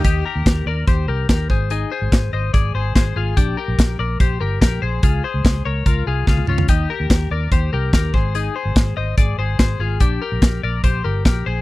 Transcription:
<<
  \new Staff \with { instrumentName = "Clean electric guitar" } { \time 4/4 \key ees \major \tempo 4 = 145 <ees' g'>8 <g' bes'>4 <bes' d''>8 <g' c''>8 <g' bes'>8 <g' bes'>8 <aes' c''>8 | <ees' aes'>8 <aes' c''>4 <c'' ees''>8 <aes' d''>8 <aes' c''>8 <aes' c''>8 <f' aes'>8 | <d' g'>8 <g' bes'>4 <bes' d''>8 <g' c''>8 <g' bes'>8 <g' bes'>8 <aes' c''>8 | <f' aes'>8 <aes' c''>4 <bes' des''>8 <f' bes'>8 <f' aes'>8 <f' aes'>8 <des' f'>8 |
<ees' g'>8 <g' bes'>4 <bes' d''>8 <g' c''>8 <g' bes'>8 <g' bes'>8 <aes' c''>8 | <ees' aes'>8 <aes' c''>4 <c'' ees''>8 <aes' d''>8 <aes' c''>8 <aes' c''>8 <f' aes'>8 | <d' g'>8 <g' bes'>4 <bes' d''>8 <g' c''>8 <g' bes'>8 <g' bes'>8 <aes' c''>8 | }
  \new Staff \with { instrumentName = "Fingered electric bass" } { \clef bass \time 4/4 \key ees \major ees,8 r16 ees,16 ees,8 ees,8 ees,8 c,8 ees,8 aes,,8~ | aes,,8 r16 aes,,16 aes,,8 aes,,8 aes,,8 aes,,8 aes,,8 aes,,8 | bes,,8 r16 bes,,16 bes,,8 bes,,8 bes,,8 g,,8 bes,,8 bes,,8 | des,8 r16 des,16 r8 des,8 des,8 c,8 des,8 des,8 |
ees,8 r16 ees,16 ees,8 ees,8 ees,8 c,8 ees,8 aes,,8~ | aes,,8 r16 aes,,16 aes,,8 aes,,8 aes,,8 aes,,8 aes,,8 aes,,8 | bes,,8 r16 bes,,16 r8 bes,,8 bes,,8 g,,8 bes,,8 bes,,8 | }
  \new DrumStaff \with { instrumentName = "Drums" } \drummode { \time 4/4 <hh bd>4 <hh bd sn>4 <hh bd>4 <hh bd sn>8 bd8 | hh4 <hh bd sn>4 <hh bd>4 <hh bd sn>4 | <hh bd>4 <hh bd sn>4 <hh bd>4 <hh bd sn>4 | <hh bd>4 <hh bd sn>4 <hh bd>4 <bd sn>16 tommh16 toml16 tomfh16 |
<hh bd>4 <hh bd sn>4 <hh bd>4 <hh bd sn>8 bd8 | hh4 <hh bd sn>4 <hh bd>4 <hh bd sn>4 | <hh bd>4 <hh bd sn>4 <hh bd>4 <hh bd sn>4 | }
>>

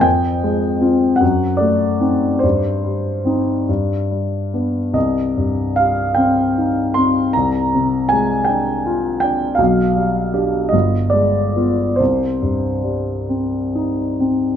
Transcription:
<<
  \new Staff \with { instrumentName = "Grand piano" } { \time 6/8 \key c \minor \tempo 4. = 49 g''4. fis''8 d''4 | c''4. r4. | ees''4 f''8 g''4 c'''8 | bes''4 aes''8 g''4 g''8 |
f''4. ees''8 d''4 | c''2~ c''8 r8 | }
  \new Staff \with { instrumentName = "Grand piano" } { \time 6/8 \key c \minor f,8 aes8 <c' f'>8 fis,8 a8 <c' dis'>8 | g,8 g8 <c' ees'>8 g,8 g8 <b d'>8 | c,8 g,8 g8 c'8 ees'8 c'8 | c,8 c8 aes8 d'8 f'8 d'8 |
b,,8 g8 <d' g'>8 g,,8 aes8 <b f'>8 | c,8 g,8 g8 c'8 ees'8 c'8 | }
>>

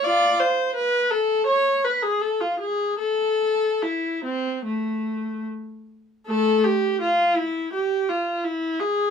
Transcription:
\new Staff \with { instrumentName = "Viola" } { \time 4/4 \key a \minor \tempo 4 = 80 <f' d''>8 c''8 b'8 a'8 cis''8 b'16 gis'16 a'16 f'16 gis'8 | a'4 e'8 c'8 a4 r4 | <a a'>8 g'8 f'8 e'8 g'8 f'8 e'8 gis'8 | }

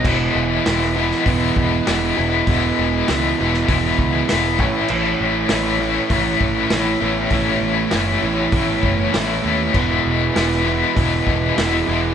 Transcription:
<<
  \new Staff \with { instrumentName = "Tonewheel organ" } { \time 4/4 \key e \major \tempo 4 = 99 <b e' gis' b'>1 | <b e' gis'>2.~ <b e' gis'>8 <cis' e' a' b'>8~ | <cis' e' a' b'>2.~ <cis' e' a' b'>8 <b cis' e' a'>8~ | <b cis' e' a'>1 |
<b e' gis' b'>1 | }
  \new Staff \with { instrumentName = "Overdriven electric guitar" } { \time 4/4 \key e \major <e gis b e'>4 <e gis b e'>8 <e gis b e'>8 <e gis b e'>4 <e gis b e'>8 <e gis b e'>8 | <e gis b e'>4 <e gis b e'>8 <e gis b e'>8 <e gis b e'>4 <e gis b e'>8 <a, e a cis' e'>8 | <a, e a cis' e'>4 <a, e a cis' e'>8 <a, e a cis' e'>8 <a, e a cis' e'>4 <a, e a cis' e'>8 <a, e a cis' e'>8 | <a, e a cis' e'>4 <a, e a cis' e'>8 <a, e a cis' e'>8 <a, e a cis' e'>4 <a, e a cis' e'>8 <a, e a cis' e'>8 |
<e gis b e'>4 <e gis b e'>8 <e gis b e'>8 <e gis b e'>4 <e gis b e'>8 <e gis b e'>8 | }
  \new Staff \with { instrumentName = "Overdriven electric guitar" } { \clef bass \time 4/4 \key e \major <e, b, e>4 <e, b, e>8 <e, b, e>8 <e, b, e>4 <e, b, e>8 <e, b, e>8 | <e, b, e>4 <e, b, e>8 <e, b, e>8 <e, b, e>4 <e, b, e>8 <a, e a>8 | <a, e a>4 <a, e a>8 <a, e a>8 <a, e a>4 <a, e a>8 <a, e a>8 | <a, e a>4 <a, e a>8 <a, e a>8 <a, e a>4 <a, e a>8 <a, e a>8 |
<e, b, e>4 <e, b, e>8 <e, b, e>8 <e, b, e>4 <e, b, e>8 <e, b, e>8 | }
  \new Staff \with { instrumentName = "Picked electric bass" } { \clef bass \time 4/4 \key e \major e,,8 e,,8 e,,4 e,,8 e,,8 e,,8 e,,8 | e,,8 e,,8 cis,8 e,,8 e,,8 cis,8 e,,8 a,,8 | a,,8 a,,8 a,,4 a,,8 a,,8 a,,8 a,,8 | a,,8 a,,8 fis,,8 a,,8 a,,8 fis,,8 a,,8 dis,8 |
e,,8 e,,8 e,,4 e,,8 e,,8 e,,8 e,,8 | }
  \new DrumStaff \with { instrumentName = "Drums" } \drummode { \time 4/4 <cymc bd>4 <hho sn>16 sn8 sn16 <hho bd>8 bd8 <hho sn>4 | <hho bd>4 <hho sn>8. sn16 <hho bd>8 bd8 <hho sn>8 bd8 | cymc4 <hho sn>4 <hho bd>8 bd8 <hho sn>4 | <hho bd>4 <hho sn>4 <hho bd>8 bd8 <hho sn>4 |
<cymc bd>4 <hho sn>16 sn8. <hho bd>8 bd8 <hho sn>4 | }
>>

